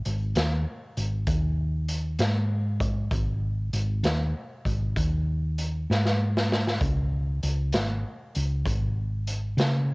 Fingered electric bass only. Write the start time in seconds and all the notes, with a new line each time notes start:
0.06 G#1
0.36 D#2
0.97 G#1
1.28 D#2
2.19 G#2
3.12 G#1
3.73 G#1
4.03 D#2
4.66 G#1
4.96 D#2
5.90 G#2
6.81 C#2
7.43 C#2
7.75 G#1
8.36 C#2
8.66 G#1
9.57 C#3